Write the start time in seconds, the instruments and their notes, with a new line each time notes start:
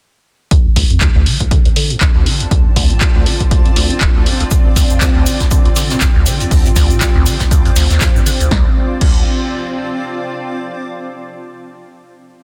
0.51 acid bass D2, ambient pad C4, kick, closed hi-hat
0.65 acid bass D2
0.76 acid bass D2, kick, open hi-hat
0.81 ambient pad F4
0.90 acid bass F2, closed hi-hat
1.00 acid bass D2, ambient pad D5, kick, clap, closed hi-hat
1.15 acid bass D2
1.24 acid bass D3, ambient pad A5, open hi-hat
1.40 acid bass D2, kick, closed hi-hat
1.51 acid bass D3, kick, closed hi-hat
1.65 acid bass D2, closed hi-hat
1.76 acid bass D3, open hi-hat
1.90 acid bass A2, closed hi-hat
2.01 acid bass D2, kick, clap, closed hi-hat
2.15 acid bass D2
2.26 acid bass D3, open hi-hat
2.40 acid bass D2, closed hi-hat
2.51 acid bass D2, kick, closed hi-hat
2.65 acid bass A2
2.76 acid bass D2, kick, open hi-hat
2.90 acid bass A2, closed hi-hat
3.01 acid bass D2, kick, clap, closed hi-hat
3.15 acid bass D2
3.26 acid bass D3, open hi-hat
3.40 acid bass D2, kick, closed hi-hat
3.51 acid bass D2, kick, closed hi-hat
3.65 acid bass F2, closed hi-hat
3.76 acid bass D2, open hi-hat
3.90 acid bass A2, closed hi-hat
4.01 acid bass D1, kick, clap, closed hi-hat
4.15 acid bass D2
4.26 acid bass G2, open hi-hat
4.40 acid bass D2, closed hi-hat
4.51 acid bass D2, kick, closed hi-hat, cabasa, shaker
4.65 acid bass D2
4.74 acid bass D2, ambient pad G5, kick, open hi-hat, cabasa, shaker
4.90 acid bass F2, closed hi-hat, cabasa
5.01 acid bass D2, kick, snare, clap, closed hi-hat, cabasa, shaker
5.15 acid bass D2
5.26 acid bass D3, open hi-hat, cabasa, shaker
5.40 acid bass D2, kick, snare, closed hi-hat, cabasa
5.51 acid bass D3, kick, closed hi-hat, cabasa, shaker
5.65 acid bass D2, closed hi-hat
5.76 acid bass D3, snare, open hi-hat, cabasa, shaker
5.90 acid bass A2, snare, closed hi-hat, cabasa
6.01 acid bass D2, kick, snare, clap, closed hi-hat, cabasa, shaker
6.15 acid bass D2
6.26 acid bass D3, open hi-hat, cabasa, shaker
6.40 acid bass D2, closed hi-hat, cabasa
6.51 acid bass D2, kick, closed hi-hat, open hi-hat, cabasa
6.65 acid bass A2, closed hi-hat, cabasa
6.76 acid bass D2, kick, snare, open hi-hat, cabasa, shaker
6.90 acid bass A2, closed hi-hat, cabasa
7.01 acid bass D2, kick, snare, clap, closed hi-hat, cabasa, shaker
7.15 acid bass D2
7.26 acid bass D3, open hi-hat, cabasa, shaker
7.40 acid bass D2, kick, snare, closed hi-hat, cabasa
7.51 acid bass D2, kick, closed hi-hat, cabasa, shaker
7.65 acid bass F2, closed hi-hat
7.76 acid bass D2, snare, open hi-hat, cabasa, shaker
7.90 acid bass D#2, snare, closed hi-hat, cabasa
8.00 kick, snare, clap, closed hi-hat, cabasa, shaker
8.15 acid bass G2, cabasa
8.26 acid bass D3, open hi-hat, cabasa, shaker
8.40 acid bass D2, closed hi-hat, cabasa
8.51 acid bass D2, ambient pad C4, kick, snare
8.60 ambient pad F4
8.68 ambient pad D5
8.74 ambient pad A5
9.01 acid bass D2, kick, crash